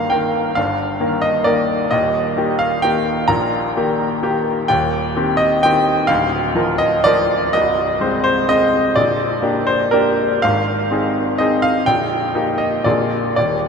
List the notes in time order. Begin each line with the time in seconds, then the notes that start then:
Already playing: G1 G2 D#3 A#3 A#4 F5 A#5
0.10 D#3 A#3 A#4 G5
0.55 G1 G2 F5
1.00 D#3 A#3 A#4
1.22 D#5
1.44 D#3 A#3 A#4 D5
1.91 D#1 D#2 D#5
2.37 D#3 A#3 G4
2.59 F5
2.82 D#3 A#3 G4 G5
3.28 A#1 A#2 A#5
3.77 D#3 A#3 G4
4.23 D#3 A#3 G4
4.68 D#1 D#2 G5
5.16 D#3 C4 G4
5.37 D#5
5.63 D#3 C4 G4 G5
6.07 D1 D2 F5
6.55 F3 F4 A#4
6.78 D#5
7.04 F3 F4 A#4 D5
7.53 C1 C2 D#5
8.01 G#3 C4 C5
8.24 C5
8.49 G#3 C4 C5 D#5
8.96 A#0 A#1 D5
9.42 A#3 D4 G4
9.67 C5
9.91 A#3 D4 G4 A#4
10.42 G#1 G#2 F5
10.91 C4 D#4 G#4
11.38 C4 D#4 G#4 D#5
11.62 F5
11.86 A#0 A#1 G5
12.35 A#3 D#4 G4
12.58 D#5
12.84 A#0 A#1 A#3 F4 G#4 D5
13.36 D#1 D#2 D5